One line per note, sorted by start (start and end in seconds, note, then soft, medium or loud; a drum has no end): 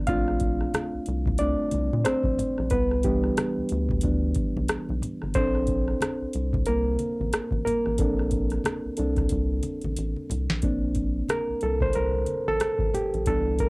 0.07 0.67 A#1 loud
0.07 0.54 A3 soft
0.07 0.54 C4 soft
0.07 0.54 D4 medium
0.07 1.37 F4 medium
0.07 1.43 F5 loud
0.07 kick loud
0.07 closed hi-hat medium
0.07 muted conga soft
0.28 cross-stick soft
0.40 kick medium
0.40 closed hi-hat medium
0.61 cross-stick soft
0.74 cross-stick loud
0.74 closed hi-hat medium
0.74 muted conga soft
0.74 high conga medium
0.94 0.99 C2 soft
1.06 1.54 C2 medium
1.06 closed hi-hat medium
1.06 muted conga soft
1.26 kick medium
1.26 high conga medium
1.26 low conga medium
1.38 1.69 A3 soft
1.38 1.70 C4 soft
1.38 2.02 D4 medium
1.38 2.01 D5 medium
1.38 closed hi-hat medium
1.38 muted conga soft
1.71 1.90 C2 medium
1.71 closed hi-hat medium
1.71 muted conga soft
1.71 high conga medium
1.93 2.05 A#2 medium
1.93 high conga medium
2.05 2.14 A#1 soft
2.05 2.68 C4 medium
2.05 2.67 C5 medium
2.05 cross-stick loud
2.05 closed hi-hat loud
2.23 2.37 A#1 medium
2.23 kick medium
2.23 high conga soft
2.39 closed hi-hat medium
2.39 muted conga soft
2.39 low conga medium
2.58 2.71 A#1 medium
2.58 cross-stick soft
2.70 3.31 C2 loud
2.70 3.03 B3 medium
2.70 3.05 B4 medium
2.70 kick loud
2.70 closed hi-hat medium
2.70 muted conga soft
2.91 cross-stick soft
3.03 3.51 E3 soft
3.03 4.33 G3 medium
3.03 3.51 B3 soft
3.03 3.51 D4 medium
3.03 4.32 G4 medium
3.03 kick medium
3.03 closed hi-hat medium
3.03 muted conga soft
3.24 cross-stick soft
3.37 cross-stick loud
3.37 closed hi-hat medium
3.37 high conga medium
3.58 3.63 D2 soft
3.69 4.01 D2 medium
3.69 closed hi-hat medium
3.89 kick medium
3.89 high conga medium
3.89 low conga medium
4.01 4.33 D2 medium
4.01 4.33 E3 soft
4.01 4.33 B3 soft
4.01 4.33 D4 soft
4.01 kick medium
4.01 closed hi-hat medium
4.01 muted conga soft
4.35 kick medium
4.35 closed hi-hat medium
4.35 high conga medium
4.57 4.68 B1 medium
4.57 high conga medium
4.68 4.78 B1 soft
4.68 cross-stick loud
4.68 closed hi-hat medium
4.89 5.01 B1 medium
4.89 high conga soft
5.02 closed hi-hat medium
5.02 low conga medium
5.22 5.34 G1 medium
5.22 cross-stick soft
5.34 5.94 A#1 loud
5.34 6.64 C4 medium
5.34 7.95 D4 medium
5.34 7.95 A4 medium
5.34 6.63 C5 loud
5.34 kick loud
5.34 closed hi-hat medium
5.55 cross-stick soft
5.67 kick medium
5.67 closed hi-hat medium
5.67 muted conga soft
5.88 cross-stick soft
6.01 cross-stick loud
6.01 closed hi-hat medium
6.01 muted conga soft
6.01 high conga medium
6.21 6.27 C2 soft
6.33 6.64 C2 medium
6.33 closed hi-hat medium
6.33 muted conga soft
6.53 kick medium
6.53 high conga medium
6.53 low conga medium
6.66 6.97 C2 medium
6.66 7.63 A#3 medium
6.66 7.62 A#4 medium
6.66 closed hi-hat medium
6.66 muted conga soft
6.99 closed hi-hat medium
6.99 high conga medium
7.20 7.32 A1 medium
7.20 high conga medium
7.33 7.41 A1 soft
7.33 cross-stick loud
7.33 closed hi-hat loud
7.33 muted conga soft
7.51 7.64 A1 medium
7.51 kick medium
7.51 high conga soft
7.65 10.26 A#3 medium
7.65 10.25 A#4 medium
7.65 closed hi-hat medium
7.65 muted conga soft
7.65 low conga medium
7.86 7.98 A1 medium
7.86 cross-stick soft
7.98 8.58 A#1 loud
7.98 8.94 C4 soft
7.98 8.94 D4 medium
7.98 8.94 A4 medium
7.98 kick medium
7.98 closed hi-hat medium
7.98 muted conga soft
8.19 cross-stick soft
8.31 kick medium
8.31 closed hi-hat medium
8.50 cross-stick soft
8.50 closed hi-hat soft
8.64 cross-stick loud
8.64 closed hi-hat medium
8.64 muted conga soft
8.64 high conga medium
8.85 8.90 C2 soft
8.97 9.28 C2 medium
8.97 9.28 C4 soft
8.97 9.28 D4 soft
8.97 9.27 A4 soft
8.97 closed hi-hat medium
9.16 kick medium
9.16 cross-stick soft
9.16 closed hi-hat soft
9.16 high conga medium
9.16 low conga medium
9.29 9.61 C2 medium
9.29 kick medium
9.29 closed hi-hat medium
9.29 muted conga soft
9.63 closed hi-hat medium
9.63 muted conga soft
9.63 high conga medium
9.81 9.96 A1 medium
9.81 closed hi-hat soft
9.81 high conga medium
9.96 10.15 A1 medium
9.96 closed hi-hat medium
9.96 muted conga soft
10.16 high conga soft
10.30 10.48 C2 medium
10.30 closed hi-hat medium
10.30 low conga medium
10.50 10.62 A#1 medium
10.50 snare medium
10.62 11.22 A#1 medium
10.62 13.23 A#3 medium
10.62 13.23 C4 soft
10.62 13.23 D4 medium
10.62 kick loud
10.62 closed hi-hat medium
10.62 muted conga soft
10.62 low conga medium
10.95 kick medium
10.95 closed hi-hat medium
10.95 muted conga soft
11.29 11.60 A#4 medium
11.29 cross-stick loud
11.29 closed hi-hat medium
11.29 muted conga soft
11.29 high conga medium
11.49 11.54 C2 soft
11.61 11.92 C2 loud
11.61 11.82 A4 medium
11.61 closed hi-hat medium
11.81 11.94 C5 loud
11.81 kick medium
11.81 high conga medium
11.81 low conga medium
11.93 12.25 C2 medium
11.93 12.44 A#4 medium
11.93 closed hi-hat medium
11.93 muted conga soft
12.26 closed hi-hat medium
12.26 muted conga soft
12.26 high conga medium
12.48 12.60 A1 medium
12.48 12.96 A4 medium
12.48 high conga medium
12.60 12.69 A1 soft
12.60 cross-stick loud
12.60 closed hi-hat medium
12.60 muted conga soft
12.78 12.92 A1 medium
12.78 kick medium
12.78 high conga soft
12.94 13.28 G4 medium
12.94 closed hi-hat medium
12.94 muted conga soft
12.94 low conga medium
13.14 13.26 A#1 medium
13.14 closed hi-hat soft
13.26 13.69 C2 loud
13.26 13.69 E3 soft
13.26 13.69 B3 soft
13.26 13.69 D4 medium
13.26 13.58 A4 medium
13.26 kick loud
13.26 closed hi-hat medium
13.26 muted conga soft
13.26 low conga medium
13.59 13.69 A#4 medium
13.59 kick medium
13.59 closed hi-hat medium
13.59 muted conga soft